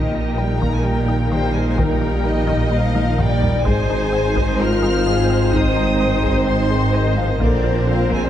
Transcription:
0.00 3.62 A#1 medium
0.00 3.67 A#1 soft
0.00 3.62 A#2 soft
0.00 0.38 D#3 medium
0.00 3.50 D#3 medium
0.00 3.50 A#3 medium
0.00 3.62 D#4 soft
0.00 0.38 G4 soft
0.00 3.62 A#4 medium
0.00 0.38 D#5 medium
0.14 0.29 A#3 soft
0.37 0.61 G3 medium
0.37 0.52 G3 medium
0.37 1.31 A#4 medium
0.37 0.62 G5 medium
0.60 0.76 D#3 medium
0.60 0.72 A#3 medium
0.60 0.73 A#5 medium
0.60 taiko medium
0.71 0.84 G#3 medium
0.71 0.85 G#5 medium
0.84 1.30 G3 medium
0.84 0.99 G3 soft
0.84 1.31 G5 medium
1.08 1.22 D#4 medium
1.31 1.46 D#3 medium
1.31 1.54 G3 medium
1.31 1.78 C5 medium
1.31 1.55 G5 medium
1.54 1.69 G3 medium
1.54 1.64 G#3 medium
1.54 1.67 G#5 medium
1.65 1.78 G#3 medium
1.65 1.79 G#5 medium
1.78 1.92 D#3 medium
1.78 2.72 G3 medium
1.78 2.26 A#4 medium
1.78 2.72 G5 medium
1.78 taiko medium
2.01 2.16 A#3 medium
2.24 2.38 G3 medium
2.24 3.19 D#5 medium
2.47 2.62 D#3 medium
2.47 taiko medium
2.71 3.19 F3 medium
2.71 2.86 G3 medium
2.71 3.18 F5 medium
2.95 3.09 D#4 medium
2.95 taiko high medium
3.18 3.33 D#3 medium
3.18 3.65 G3 medium
3.18 3.66 D5 medium
3.18 3.66 G5 medium
3.18 taiko low-mid medium
3.42 3.56 G3 soft
3.42 taiko low medium
3.64 7.43 G#1 medium
3.64 7.37 G#1 medium
3.64 7.38 G#2 medium
3.64 7.38 D#3 medium
3.64 4.43 G#3 medium
3.64 3.80 G#3 medium
3.64 7.38 C4 medium
3.64 7.37 D#4 medium
3.64 7.37 C5 medium
3.64 4.59 C5 medium
3.64 4.60 G#5 medium
3.64 taiko medium
3.90 4.04 D#4 medium
4.12 4.27 C4 medium
4.36 4.50 G#3 medium
4.36 taiko medium
4.59 4.74 C4 soft
4.59 5.52 F4 medium
4.59 5.07 A#4 medium
4.59 5.54 F6 loud
4.82 4.97 G#4 medium
5.06 5.20 G#3 medium
5.06 5.53 G#4 medium
5.29 5.44 C4 medium
5.53 5.67 G#3 medium
5.53 6.47 D#4 medium
5.53 5.99 C5 medium
5.53 6.47 D#6 medium
5.53 taiko medium
5.76 5.91 D#4 medium
6.00 6.14 C4 medium
6.00 7.38 C5 medium
6.23 6.38 G#3 medium
6.23 taiko medium
6.46 6.94 C4 medium
6.46 6.61 C4 medium
6.46 6.93 C6 medium
6.70 6.85 G#4 medium
6.94 7.18 D#3 medium
6.94 7.08 G#3 medium
6.94 7.18 D#5 medium
7.16 7.29 F3 medium
7.16 7.32 C4 medium
7.16 7.29 F5 medium
7.30 7.42 D#3 medium
7.30 7.42 D#5 medium
7.40 8.30 A#1 medium
7.40 8.30 A#2 medium
7.40 7.87 D3 medium
7.40 8.30 F3 medium
7.40 7.54 A#3 medium
7.40 8.30 C4 medium
7.40 8.30 A#4 medium
7.40 8.30 C5 medium
7.40 7.88 D5 medium
7.40 taiko medium
7.64 7.78 F4 medium
7.87 8.11 F3 medium
7.87 8.02 D4 medium
7.87 8.12 F5 medium
8.10 8.22 G#3 medium
8.10 8.25 A#3 medium
8.10 8.24 G#5 medium
8.10 taiko medium
8.22 8.30 G3 medium
8.22 8.30 G5 soft

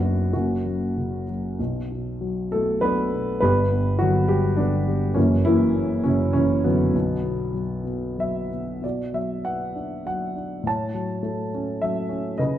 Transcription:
0.00 0.28 F#1 medium
0.00 0.03 F#2 medium
0.00 0.32 F#2 soft
0.00 0.31 F#3 medium
0.00 0.30 B3 medium
0.00 0.30 D4 medium
0.00 0.32 F#4 medium
0.33 1.55 F#1 medium
0.33 1.55 F#2 medium
0.33 0.64 F#3 medium
0.33 1.25 A#3 medium
0.33 1.25 C#4 soft
0.33 1.24 F#4 medium
0.65 1.28 F#3 soft
0.97 1.58 C#3 soft
1.30 1.59 F#3 soft
1.59 3.38 B1 medium
1.59 1.90 B2 medium
1.92 2.49 B2 soft
2.21 2.80 F#3 soft
2.51 3.10 B2 soft
2.51 2.81 A3 medium
2.51 2.83 A4 medium
2.81 3.39 F#3 soft
2.81 3.38 B3 medium
2.81 3.38 D4 medium
2.81 3.39 B4 medium
3.12 3.40 B2 soft
3.40 5.12 G1 medium
3.40 5.12 G2 medium
3.40 3.70 B3 medium
3.40 3.96 D4 medium
3.40 3.97 G4 medium
3.40 3.95 B4 medium
3.72 4.57 B3 medium
3.99 4.57 D3 medium
3.99 4.28 F#3 medium
3.99 4.29 F#4 medium
4.28 4.86 G3 medium
4.28 4.58 G4 medium
4.57 5.12 D3 medium
4.57 5.13 B3 medium
4.57 5.18 D4 medium
4.88 5.16 G3 medium
5.14 6.90 F#1 medium
5.14 5.46 F#2 medium
5.14 5.44 C#3 medium
5.14 5.43 E3 medium
5.14 5.43 A#3 medium
5.14 5.46 C#4 medium
5.45 6.05 F#2 medium
5.45 6.01 E3 medium
5.45 6.01 A#3 medium
5.45 6.06 E4 loud
5.76 6.02 C#4 medium
6.04 6.63 F#2 medium
6.04 6.33 C#3 medium
6.04 6.32 C#4 medium
6.33 6.62 C#3 medium
6.33 6.92 E3 medium
6.33 6.64 C#4 medium
6.64 6.94 F#2 medium
6.64 6.92 B2 medium
6.64 8.49 D3 medium
6.64 7.52 F#3 medium
6.64 8.48 B3 medium
6.93 8.79 B1 medium
6.93 7.21 B2 medium
7.23 7.83 B2 soft
7.54 8.17 F#3 soft
7.84 8.49 B2 soft
8.18 8.81 F#3 soft
8.18 8.80 E5 medium
8.51 8.80 B2 soft
8.82 10.61 B2 medium
8.82 9.16 D5 medium
8.86 9.74 F#4 soft
9.13 10.04 F#3 soft
9.13 9.47 E5 medium
9.45 10.62 B3 soft
9.45 10.05 F#5 medium
9.75 10.34 D4 soft
10.06 10.63 F#3 soft
10.06 10.67 F#5 medium
10.36 10.64 D4 soft
10.63 12.33 A2 medium
10.63 11.50 C#5 medium
10.63 11.21 A5 medium
10.94 11.81 F#3 soft
11.23 12.34 A3 soft
11.54 12.08 C#4 medium
11.82 12.38 F#3 soft
11.82 12.40 E5 medium
12.09 12.38 C#4 medium
12.38 12.58 C#3 medium
12.38 12.58 B4 medium
12.38 12.58 D#5 medium

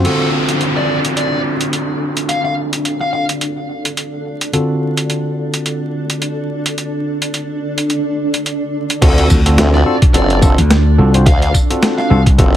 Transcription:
0.05 4.51 D3 medium
0.05 4.51 C4 medium
0.05 12.57 D4 medium
0.05 4.51 F4 medium
0.05 4.51 F#4 medium
0.05 0.27 A4 medium
0.05 4.51 A4 medium
0.05 closed hi-hat soft
0.05 crash medium
0.05 downlifter medium
0.22 12.57 A4 medium
0.49 closed hi-hat medium
0.60 12.57 D5 medium
0.60 closed hi-hat soft
0.77 0.97 D5 medium
1.05 closed hi-hat medium
1.17 1.39 D5 medium
1.17 closed hi-hat medium
1.61 closed hi-hat medium
1.73 closed hi-hat medium
2.17 closed hi-hat medium
2.29 2.39 F5 medium
2.29 closed hi-hat medium
2.45 2.53 F5 medium
2.73 closed hi-hat medium
2.85 closed hi-hat soft
3.01 3.09 F5 medium
3.13 3.23 F5 medium
3.29 closed hi-hat medium
3.41 closed hi-hat medium
3.85 closed hi-hat medium
3.97 closed hi-hat soft
4.41 closed hi-hat medium
4.53 8.99 D3 medium
4.53 8.99 C4 medium
4.53 8.99 F4 medium
4.53 8.99 F#4 medium
4.53 8.99 A4 medium
4.53 closed hi-hat soft
4.97 closed hi-hat medium
5.10 closed hi-hat soft
5.54 closed hi-hat medium
5.66 closed hi-hat medium
6.10 closed hi-hat medium
6.22 closed hi-hat medium
6.66 closed hi-hat medium
6.78 closed hi-hat soft
7.22 closed hi-hat medium
7.34 closed hi-hat soft
7.78 closed hi-hat medium
7.90 closed hi-hat soft
8.34 closed hi-hat medium
8.46 closed hi-hat soft
8.90 closed hi-hat medium
9.02 9.28 D2 loud
9.02 9.40 C4 loud
9.02 9.40 F4 medium
9.02 9.40 F#4 medium
9.02 9.40 A4 loud
9.02 9.24 A4 medium
9.02 kick loud
9.02 closed hi-hat medium
9.02 crash loud
9.18 closed hi-hat soft
9.30 9.56 D2 loud
9.30 kick medium
9.30 tambourine medium
9.46 9.83 C4 medium
9.46 9.83 F4 medium
9.46 9.83 F#4 medium
9.46 9.83 A4 loud
9.46 closed hi-hat medium
9.58 9.84 D2 medium
9.58 snare loud
9.58 closed hi-hat medium
9.74 9.95 D5 medium
9.74 snare soft
9.86 9.96 C4 medium
9.86 9.96 F4 medium
9.86 9.96 F#4 medium
9.86 9.96 A4 loud
10.02 kick loud
10.02 closed hi-hat medium
10.14 10.56 F#1 loud
10.14 10.40 C4 loud
10.14 10.40 F4 medium
10.14 10.40 F#4 medium
10.14 10.40 A4 loud
10.14 10.36 D5 medium
10.14 closed hi-hat medium
10.30 closed hi-hat soft
10.42 10.58 C4 loud
10.42 10.58 F4 medium
10.42 10.58 F#4 medium
10.42 10.58 A4 loud
10.42 kick loud
10.42 tambourine medium
10.58 10.96 D2 medium
10.58 closed hi-hat medium
10.70 snare loud
10.70 closed hi-hat medium
10.98 11.24 C2 medium
10.98 11.12 C4 medium
10.98 11.12 F4 medium
10.98 11.12 F#4 medium
10.98 11.12 A4 medium
11.14 11.26 C4 medium
11.14 11.26 F4 medium
11.14 11.26 F#4 medium
11.14 11.26 C5 medium
11.14 closed hi-hat medium
11.26 11.52 D2 loud
11.26 11.37 F5 medium
11.26 kick loud
11.26 closed hi-hat medium
11.42 11.50 F5 medium
11.42 closed hi-hat soft
11.54 kick medium
11.54 tambourine medium
11.70 12.08 C4 medium
11.70 12.08 F4 medium
11.70 12.08 F#4 medium
11.70 12.08 A4 loud
11.70 closed hi-hat medium
11.83 snare loud
11.83 closed hi-hat medium
11.98 12.06 F5 loud
11.98 snare soft
12.10 12.37 C2 medium
12.10 12.20 C4 medium
12.10 12.20 F4 medium
12.10 12.20 F#4 medium
12.10 12.20 A4 loud
12.10 12.21 F5 medium
12.26 kick loud
12.26 closed hi-hat medium
12.38 12.57 F#1 loud
12.38 12.57 C4 loud
12.38 12.57 F4 medium
12.38 12.57 F#4 loud
12.38 12.57 A4 loud
12.38 kick loud
12.38 closed hi-hat medium

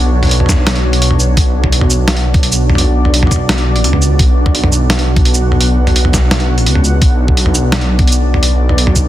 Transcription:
0.00 0.84 B1 medium
0.00 9.08 B3 medium
0.00 9.08 D4 medium
0.00 9.08 F#4 medium
0.00 1.36 C#5 medium
0.23 closed hi-hat soft
0.23 mid tom medium
0.25 closed hi-hat soft
0.27 closed hi-hat soft
0.29 closed hi-hat soft
0.31 closed hi-hat medium
0.40 mid tom soft
0.46 kick medium
0.46 snare medium
0.46 mid tom soft
0.46 shaker medium
0.52 mid tom medium
0.67 snare loud
0.67 closed hi-hat medium
0.76 closed hi-hat soft
0.84 1.36 B1 medium
0.93 closed hi-hat soft
1.02 closed hi-hat medium
1.11 mid tom medium
1.20 shaker soft
1.37 2.42 B1 loud
1.37 4.18 D5 medium
1.37 kick loud
1.37 closed hi-hat medium
1.64 kick medium
1.64 mid tom medium
1.72 closed hi-hat medium
1.81 mid tom medium
1.90 shaker medium
2.08 snare loud
2.08 closed hi-hat medium
2.17 closed hi-hat soft
2.34 kick loud
2.34 closed hi-hat soft
2.43 3.77 B1 medium
2.43 closed hi-hat medium
2.52 shaker medium
2.70 mid tom medium
2.75 closed hi-hat medium
2.75 mid tom soft
2.81 mid tom soft
3.05 mid tom soft
3.14 closed hi-hat medium
3.23 mid tom medium
3.27 mid tom medium
3.31 kick medium
3.31 mid tom medium
3.31 shaker medium
3.36 mid tom soft
3.49 snare loud
3.49 closed hi-hat medium
3.58 closed hi-hat soft
3.75 3.85 A1 loud
3.75 closed hi-hat soft
3.84 4.18 C#2 medium
3.84 closed hi-hat medium
3.93 mid tom medium
4.02 shaker soft
4.19 5.24 B1 loud
4.19 7.01 F#5 medium
4.19 kick loud
4.19 closed hi-hat medium
4.46 kick medium
4.46 mid tom soft
4.55 closed hi-hat medium
4.64 mid tom medium
4.72 shaker medium
4.90 snare loud
4.90 closed hi-hat medium
4.99 closed hi-hat soft
5.16 kick loud
5.16 closed hi-hat soft
5.25 6.59 B1 medium
5.25 closed hi-hat medium
5.34 shaker medium
5.52 mid tom medium
5.61 closed hi-hat medium
5.87 closed hi-hat soft
5.87 mid tom soft
5.96 closed hi-hat medium
6.05 mid tom medium
6.13 kick medium
6.13 snare medium
6.13 shaker medium
6.31 snare loud
6.31 closed hi-hat medium
6.40 closed hi-hat soft
6.58 6.68 A1 medium
6.58 closed hi-hat soft
6.66 7.01 C#2 medium
6.66 closed hi-hat medium
6.75 mid tom soft
6.84 shaker soft
7.02 8.06 B1 loud
7.02 9.08 D5 medium
7.02 kick loud
7.02 closed hi-hat medium
7.28 kick medium
7.37 closed hi-hat medium
7.46 mid tom medium
7.55 shaker medium
7.72 snare loud
7.72 closed hi-hat medium
7.81 closed hi-hat soft
7.99 kick loud
7.99 closed hi-hat soft
8.07 9.08 B1 medium
8.07 closed hi-hat medium
8.12 shaker medium
8.34 mid tom medium
8.43 closed hi-hat medium
8.69 mid tom medium
8.78 closed hi-hat medium
8.87 mid tom medium
8.96 kick medium
8.96 shaker medium

